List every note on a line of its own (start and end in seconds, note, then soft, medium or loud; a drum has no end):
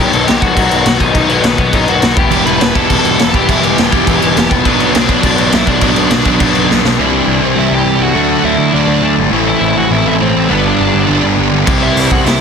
0.00 0.54 B2 loud
0.00 0.55 D#3 loud
0.00 0.55 F#3 loud
0.00 0.57 B3 loud
0.00 0.56 D#4 loud
0.00 0.12 G4 medium
0.00 0.13 G5 loud
0.13 0.24 B1 medium
0.13 0.27 A4 medium
0.13 0.27 A5 loud
0.13 crash medium
0.27 0.38 B1 medium
0.27 0.41 G4 medium
0.27 0.42 G5 loud
0.27 snare loud
0.27 crash medium
0.42 0.52 B1 medium
0.42 0.97 F#4 medium
0.42 0.96 F#5 loud
0.42 kick medium
0.42 crash medium
0.55 0.67 B1 loud
0.55 1.12 B2 medium
0.55 1.12 D#3 medium
0.55 1.13 F#3 medium
0.55 1.15 B3 loud
0.55 1.15 D#4 medium
0.55 kick loud
0.55 crash loud
0.71 0.82 B1 loud
0.71 crash medium
0.86 0.96 B1 medium
0.86 snare loud
0.86 crash medium
1.00 1.11 B1 loud
1.00 1.28 D#4 medium
1.00 1.30 D#5 medium
1.00 kick medium
1.00 crash medium
1.13 1.25 B1 loud
1.13 1.70 B2 loud
1.13 1.71 D#3 loud
1.13 1.72 F#3 medium
1.13 1.74 B3 loud
1.13 1.73 D#4 loud
1.13 kick loud
1.13 crash medium
1.29 1.39 B1 medium
1.29 1.43 B3 medium
1.29 1.44 B4 medium
1.29 crash medium
1.43 1.54 B1 medium
1.43 1.58 B3 medium
1.43 1.58 B4 medium
1.43 snare loud
1.43 crash medium
1.58 1.69 B1 medium
1.58 1.73 B3 medium
1.58 1.74 B4 loud
1.58 kick loud
1.58 crash medium
1.71 1.84 B1 loud
1.71 2.15 B2 medium
1.71 2.15 D#3 medium
1.71 2.16 F#3 medium
1.71 2.17 B3 medium
1.71 1.87 D#4 medium
1.71 2.17 D#4 medium
1.71 1.89 D#5 medium
1.71 kick loud
1.71 crash medium
1.88 1.98 B1 loud
1.88 2.16 F#4 medium
1.88 2.17 F#5 loud
1.88 crash medium
2.02 2.13 B1 medium
2.02 snare loud
2.02 crash medium
2.15 2.27 E1 medium
2.15 2.74 E3 medium
2.15 2.74 G3 loud
2.15 2.75 B3 loud
2.15 2.72 E4 medium
2.15 2.45 G4 medium
2.15 2.46 G5 loud
2.15 kick loud
2.15 crash medium
2.31 2.42 E1 loud
2.31 2.74 E3 medium
2.31 2.77 B3 medium
2.31 2.75 E4 loud
2.31 2.74 G4 loud
2.31 crash medium
2.45 2.56 E1 medium
2.45 2.74 B4 medium
2.45 2.73 B5 loud
2.45 crash medium
2.60 2.71 E1 medium
2.60 snare loud
2.60 crash medium
2.74 2.86 E1 medium
2.74 3.31 E3 medium
2.74 3.32 G3 medium
2.74 3.34 B3 medium
2.74 3.49 B3 medium
2.74 3.32 E4 medium
2.74 3.48 E4 medium
2.74 3.47 G4 medium
2.74 3.30 A4 medium
2.74 3.36 A5 loud
2.74 kick medium
2.74 crash medium
2.78 3.47 E3 medium
2.90 3.01 E1 loud
2.90 kick loud
2.90 crash loud
3.04 3.15 E1 loud
3.04 crash medium
3.18 3.29 E1 loud
3.18 snare loud
3.18 crash medium
3.32 3.44 E1 medium
3.32 3.90 E3 medium
3.32 3.91 G3 loud
3.32 3.92 B3 loud
3.32 3.90 E4 loud
3.32 3.48 G4 medium
3.32 3.49 G5 medium
3.32 kick medium
3.32 crash medium
3.49 3.59 E1 loud
3.49 3.91 E3 medium
3.49 3.94 B3 loud
3.49 3.63 E4 medium
3.49 3.92 E4 loud
3.49 3.91 G4 loud
3.49 3.64 E5 loud
3.49 kick loud
3.49 crash medium
3.62 3.73 E1 medium
3.62 4.47 G4 medium
3.62 4.51 G5 loud
3.62 crash medium
3.77 3.88 E1 medium
3.77 snare loud
3.77 crash medium
3.91 4.03 E1 medium
3.91 4.51 E3 medium
3.91 4.65 E3 medium
3.91 4.50 G3 medium
3.91 4.65 B3 medium
3.91 4.66 B3 medium
3.91 4.49 E4 medium
3.91 4.65 E4 medium
3.91 4.64 G4 medium
3.91 kick medium
3.91 crash medium
4.07 4.17 E1 loud
4.07 kick loud
4.07 crash medium
4.22 4.32 E1 loud
4.22 crash medium
4.36 4.47 E1 medium
4.36 snare loud
4.36 crash medium
4.51 4.61 E1 loud
4.51 kick medium
4.51 crash medium
4.64 4.76 B1 loud
4.64 5.21 B2 medium
4.64 5.08 B2 loud
4.64 5.08 F#3 loud
4.64 5.22 F#3 loud
4.64 5.23 B3 loud
4.64 5.08 B3 loud
4.64 4.93 B3 medium
4.64 5.08 D4 loud
4.64 5.23 D4 loud
4.64 5.07 F#4 loud
4.64 4.93 B4 loud
4.64 kick loud
4.64 crash medium
4.79 4.90 B1 medium
4.79 crash medium
4.94 5.04 B1 loud
4.94 5.09 C4 medium
4.94 5.10 C5 medium
4.94 snare loud
4.94 crash medium
5.08 5.19 B1 medium
5.08 5.80 B2 medium
5.08 5.81 F#3 medium
5.08 5.81 B3 medium
5.08 5.81 D4 medium
5.08 5.50 D4 medium
5.08 5.81 F#4 loud
5.08 5.55 D5 loud
5.08 kick medium
5.08 crash medium
5.22 5.34 B1 loud
5.22 5.79 B2 medium
5.22 5.80 F#3 medium
5.22 5.82 B3 medium
5.22 5.82 D4 loud
5.22 kick loud
5.22 crash loud
5.38 5.48 B1 loud
5.38 crash medium
5.52 5.63 B1 loud
5.52 5.67 E4 medium
5.52 5.67 E5 medium
5.52 snare loud
5.52 crash medium
5.67 5.78 B1 loud
5.67 6.66 D4 medium
5.67 6.66 D5 medium
5.67 kick medium
5.67 crash medium
5.80 5.92 B1 loud
5.80 6.38 B2 medium
5.80 6.24 B2 medium
5.80 6.39 F#3 loud
5.80 6.25 F#3 loud
5.80 6.25 B3 loud
5.80 6.40 B3 loud
5.80 6.25 D4 loud
5.80 6.40 D4 loud
5.80 6.24 F#4 loud
5.80 kick loud
5.80 crash medium
5.96 6.06 B1 medium
5.96 crash medium
6.11 6.21 B1 medium
6.11 snare loud
6.11 crash medium
6.25 6.36 B1 medium
6.25 6.99 B2 medium
6.25 6.97 F#3 medium
6.25 6.98 B3 medium
6.25 6.98 D4 loud
6.25 6.97 F#4 medium
6.25 kick medium
6.25 crash medium
6.39 6.51 B1 loud
6.39 6.97 B2 medium
6.39 6.98 F#3 medium
6.39 6.98 B3 medium
6.39 6.99 D4 loud
6.39 kick loud
6.39 crash medium
6.55 6.66 B1 medium
6.55 crash medium
6.69 6.80 B1 medium
6.69 snare medium
6.84 6.95 B1 medium
6.84 snare loud
6.97 7.19 C2 loud
6.97 8.14 C3 medium
6.97 7.55 C3 medium
6.97 8.13 E3 medium
6.97 7.56 G3 medium
6.97 8.14 G3 medium
6.97 8.15 C4 medium
6.97 7.56 C4 medium
6.97 7.40 D4 medium
6.97 8.16 E4 medium
6.97 7.57 E4 medium
7.02 7.41 D5 medium
7.27 7.38 C2 medium
7.42 7.52 C2 medium
7.42 7.57 C4 medium
7.42 7.58 C5 medium
7.56 7.67 C2 medium
7.56 8.14 C3 medium
7.56 8.15 G3 medium
7.56 8.15 C4 medium
7.56 7.71 E4 medium
7.56 8.15 E4 medium
7.56 7.73 E5 medium
7.71 7.81 C2 medium
7.71 8.00 G4 medium
7.71 8.03 G5 medium
7.85 7.96 C2 medium
7.99 8.10 C2 medium
7.99 8.42 F#4 medium
7.99 8.44 F#5 medium
8.13 8.36 D2 medium
8.13 9.31 D3 medium
8.13 8.72 D3 medium
8.13 8.73 F#3 medium
8.13 9.31 A3 medium
8.13 8.73 A3 loud
8.13 9.32 D4 medium
8.13 8.74 D4 medium
8.13 9.33 F#4 medium
8.44 8.55 D2 medium
8.44 8.73 E4 medium
8.44 8.72 E5 medium
8.58 8.69 D2 medium
8.73 8.84 D2 medium
8.73 9.31 D3 medium
8.73 9.32 F#3 medium
8.73 9.32 A3 medium
8.73 9.15 D4 medium
8.73 9.33 D4 medium
8.73 9.15 D5 medium
8.87 8.98 D2 medium
9.02 9.13 D2 medium
9.17 9.28 G1 medium
9.30 9.53 A1 loud
9.30 10.48 A2 loud
9.30 9.90 A2 medium
9.30 10.48 E3 medium
9.30 9.90 E3 medium
9.30 10.49 A3 medium
9.30 9.90 A3 loud
9.30 10.49 C4 medium
9.30 9.91 C4 loud
9.30 9.91 E4 loud
9.30 10.50 E4 loud
9.48 9.75 E4 medium
9.48 9.75 E5 loud
9.61 9.72 A1 medium
9.76 9.87 A1 medium
9.76 9.91 F#4 medium
9.76 9.92 F#5 medium
9.90 10.01 A1 medium
9.90 10.48 A2 medium
9.90 10.49 E3 medium
9.90 10.49 A3 medium
9.90 10.50 C4 medium
9.90 10.05 E4 medium
9.90 10.50 E4 medium
9.90 10.07 E5 loud
10.05 10.16 A1 loud
10.05 10.13 E4 medium
10.05 10.13 E5 medium
10.20 10.31 A1 medium
10.20 10.48 C4 medium
10.20 10.51 C5 medium
10.35 10.46 A1 medium
10.48 10.71 G1 medium
10.48 11.06 G2 medium
10.48 11.65 G2 medium
10.48 11.65 D3 medium
10.48 11.07 D3 medium
10.48 11.07 G3 medium
10.48 11.66 G3 medium
10.48 11.08 B3 medium
10.48 10.64 B3 medium
10.48 11.67 B3 medium
10.48 11.08 D4 loud
10.48 11.67 D4 loud
10.48 10.67 B4 medium
10.66 11.20 D4 medium
10.66 11.24 D5 medium
10.79 10.90 G1 medium
10.95 11.05 G1 medium
11.07 11.19 G1 medium
11.07 11.66 G2 medium
11.07 11.65 D3 medium
11.07 11.65 G3 medium
11.07 11.66 B3 medium
11.07 11.67 D4 medium
11.23 11.34 G1 medium
11.39 11.49 G1 medium
11.53 11.63 G1 medium
11.65 11.88 C2 loud
11.65 12.23 C3 medium
11.65 12.41 C3 medium
11.65 12.24 G3 medium
11.65 12.41 G3 medium
11.65 12.25 C4 medium
11.65 12.41 C4 medium
11.65 12.25 E4 medium
11.65 12.41 E4 loud
11.65 kick loud
11.65 crash loud
11.83 12.10 E4 medium
11.83 12.12 E5 medium
11.96 12.06 C2 medium
11.96 open hi-hat medium
12.11 12.22 C2 medium
12.11 12.25 F#4 medium
12.11 12.26 F#5 medium
12.11 kick medium
12.24 12.36 C2 medium
12.24 12.41 C3 medium
12.24 12.41 G3 medium
12.24 12.41 C4 medium
12.24 12.41 E4 medium
12.24 12.40 E4 medium
12.24 12.39 E5 medium
12.24 snare loud
12.24 open hi-hat medium